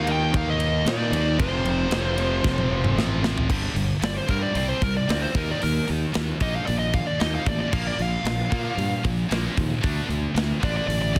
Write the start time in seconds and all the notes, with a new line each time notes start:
Already playing: D#2
0.06 D#3 A#3 D#4, ride
0.11 D#3 G5
0.32 D#2 D#3 A#3 D#4, kick, ride
0.37 F5
0.50 D#5
0.60 ride
0.85 A#2 D#3 A#3 D#4 D5, snare, ride
1.12 D#2 D#3 A#3 D#4, ride
1.38 F1 F2 C3 F3 C5, kick, ride
1.64 F1, ride
1.90 F1 F2 C3 F3, snare, ride
2.17 F2 C3 F3, ride
2.44 F1 F2 C3 F3, kick, snare
2.58 high tom
2.70 F1
2.84 mid tom
2.96 A1 F2 C3 F3, snare
3.22 F2 C3 F3, snare
3.38 floor tom
3.49 G1 G2 D3 G3, kick, crash
3.74 G1 G2 D3, open hi-hat
4.02 G1 G2 D3 D5, snare, open hi-hat
4.18 C5
4.27 G2 D3 G3 A#4, kick, open hi-hat
4.42 D5
4.54 C2 C3 G3 C4 D5, open hi-hat
4.69 C5
4.81 C2 C3 G3 A#4, kick, open hi-hat
4.97 D5
5.08 D2 C3 G3 C4 D5, snare, open hi-hat
5.21 C5
5.35 D#2 D#3 A#3 D#4 A#4, kick, open hi-hat
5.51 D5
5.61 D#2 D#3 A#3 A#4, open hi-hat
5.88 D#2 D#3 A#3, open hi-hat
6.13 D#2 D#3 A#3, snare, open hi-hat
6.40 A#1 D#3 A#3 D#4 D#5, kick, open hi-hat
6.56 F5
6.66 A#1 D#3 A#3 D5, open hi-hat
6.79 D#5
6.93 D#3 A#3 F5, kick, open hi-hat
7.07 D5
7.20 D#2 D#3 A#3 D#4 D#5, snare, open hi-hat
7.35 F5
7.46 A1 D#3 A#3 D5, kick, open hi-hat
7.60 D5
7.72 A#1 A#2 F3 A#3 F5, kick, crash
7.87 D5
7.98 A#1 A#2 F3, open hi-hat
8.02 F5
8.24 A#1 A#2 F3, snare, open hi-hat
8.50 A#2 F3 A#3, kick, open hi-hat
8.77 G2 A#2 F3, open hi-hat
9.04 A#1 A#2 F3, kick, open hi-hat
9.29 A#1 A#2 F3 A#3, snare, open hi-hat
9.56 D#2 A#2 F3, kick, open hi-hat
9.81 D2 D3 A3 D4, kick, open hi-hat
10.09 D2 D3 A3, open hi-hat
10.35 D2 D3 A3, snare, open hi-hat
10.60 A1 D3 A3 D4, kick, open hi-hat
10.64 D5
10.77 D5
10.87 A1 D3 A3 D5, open hi-hat
11.02 D5
11.13 D3 A3, kick, open hi-hat